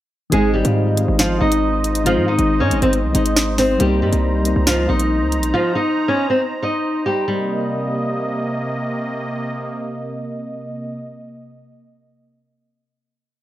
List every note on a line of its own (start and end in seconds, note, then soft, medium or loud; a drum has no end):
0.30 0.63 G#1 loud
0.30 0.54 D#3 loud
0.30 0.55 G#3 medium
0.30 0.53 G#3 medium
0.30 0.56 C4 loud
0.30 3.77 D#4 medium
0.30 0.53 G#4 loud
0.30 7.24 C5 medium
0.30 3.77 D#5 medium
0.30 closed hi-hat medium
0.34 0.56 D#4 loud
0.53 1.15 G3 medium
0.53 1.15 G4 medium
0.62 1.06 G#2 loud
0.62 0.87 D#3 medium
0.62 0.88 G#3 medium
0.62 0.88 C4 medium
0.62 closed hi-hat medium
0.67 0.89 F4 medium
0.95 1.27 D#3 medium
0.95 1.28 G#3 medium
0.95 1.29 C4 medium
0.95 closed hi-hat medium
1.00 1.29 F4 medium
1.08 1.40 G#1 loud
1.19 1.40 F3 medium
1.19 1.40 F4 medium
1.19 snare loud
1.19 closed hi-hat medium
1.39 2.18 G#1 loud
1.39 1.86 D#3 medium
1.39 1.87 G#3 medium
1.39 1.88 C4 medium
1.39 2.02 D#4 medium
1.39 2.02 D#5 medium
1.43 1.88 D#4 medium
1.52 closed hi-hat medium
1.84 closed hi-hat medium
1.95 closed hi-hat medium
2.04 2.28 D#3 loud
2.04 2.27 F3 medium
2.04 2.29 G#3 loud
2.04 2.30 C4 medium
2.04 2.27 F4 loud
2.04 closed hi-hat medium
2.08 2.30 D#4 loud
2.17 2.38 G#2 loud
2.28 2.59 D#4 medium
2.28 2.59 D#5 medium
2.36 2.62 G#1 loud
2.36 2.61 D#3 medium
2.36 2.62 G#3 medium
2.36 2.62 C4 medium
2.36 closed hi-hat medium
2.41 2.63 D#4 medium
2.60 2.73 G#2 loud
2.60 2.81 C#4 medium
2.60 2.81 C#5 medium
2.69 2.82 G#1 loud
2.69 3.01 D#3 medium
2.69 3.02 G#3 medium
2.69 3.03 C4 medium
2.69 closed hi-hat medium
2.74 3.03 D#4 medium
2.82 3.05 G#1 loud
2.82 2.92 C4 medium
2.82 2.93 C5 medium
2.82 closed hi-hat medium
2.93 closed hi-hat medium
3.04 3.14 C2 loud
3.12 3.77 G#1 loud
3.12 3.60 D#3 medium
3.12 3.61 G#3 medium
3.12 3.62 C4 medium
3.12 3.56 D#4 medium
3.12 3.56 D#5 medium
3.12 closed hi-hat medium
3.17 3.62 D#4 medium
3.26 closed hi-hat medium
3.36 snare loud
3.58 3.79 C4 medium
3.58 3.79 C5 medium
3.58 snare medium
3.58 open hi-hat medium
3.78 4.03 C2 loud
3.78 4.02 G3 loud
3.78 4.01 G3 medium
3.78 4.03 A#3 medium
3.78 4.04 C4 medium
3.78 7.24 D#4 medium
3.78 4.00 G4 loud
3.78 7.24 A#5 medium
3.78 closed hi-hat medium
3.82 4.04 D#4 loud
4.02 4.12 G2 loud
4.02 4.64 G3 medium
4.02 4.63 G4 medium
4.10 4.54 C2 loud
4.10 4.35 G3 medium
4.10 4.35 A#3 medium
4.10 4.36 C4 medium
4.10 closed hi-hat medium
4.15 4.37 D#4 medium
4.43 4.75 G3 medium
4.43 4.76 A#3 medium
4.43 4.76 C4 medium
4.43 closed hi-hat medium
4.47 4.77 D#4 medium
4.56 4.79 C2 loud
4.67 4.88 F3 medium
4.67 4.87 F4 medium
4.67 snare loud
4.67 closed hi-hat medium
4.78 4.88 C#2 loud
4.87 5.23 A#1 loud
4.87 5.34 G3 medium
4.87 5.35 A#3 medium
4.87 5.36 C4 medium
4.87 5.50 D#4 medium
4.87 5.50 D#5 medium
4.91 5.36 D#4 medium
5.00 closed hi-hat medium
5.21 5.39 C#2 loud
5.32 closed hi-hat medium
5.38 5.53 A#1 loud
5.43 closed hi-hat medium
5.54 5.75 F3 medium
5.54 5.74 F4 loud
5.75 6.06 D#4 medium
5.75 6.07 D#5 medium
6.08 6.29 C#4 medium
6.08 6.29 C#5 medium
6.30 6.40 C4 medium
6.30 6.40 C5 medium
6.62 7.03 D#4 medium
6.62 7.04 D#5 medium
7.06 7.27 G3 medium
7.06 7.26 G4 medium
7.28 10.99 C3 medium
7.28 8.54 G3 medium
7.28 10.99 A#3 medium
7.28 10.99 D#5 medium